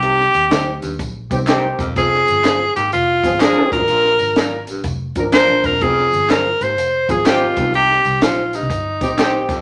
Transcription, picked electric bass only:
X:1
M:4/4
L:1/16
Q:"Swing" 1/4=124
K:Cm
V:1 name="Picked electric bass" clef=bass
C,,2 E,,2 D,,2 E,,2 B,,,2 C,,4 =E,,,2 | F,,,2 G,,,4 A,,,2 F,,,2 A,,,3 z B,,, A,,, | B,,,2 A,,,4 B,,,2 F,,,2 A,,,3 B,,, =E,,,2 | F,,,2 G,,,4 A,,,2 F,,,2 A,,,4 C,,2- |
C,,2 C,,2 B,,,3 C,, G,,,2 B,,,4 =E,,,2 |]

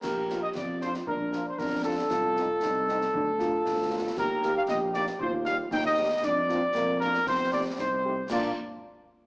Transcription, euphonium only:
X:1
M:2/4
L:1/8
Q:1/4=116
K:Bb
V:1 name="Euphonium"
G2 F2 | D2 D2 | F2 E2 | D F3 |
G4 | F2 E2 | D C B, z | C2 E z |
z4 |]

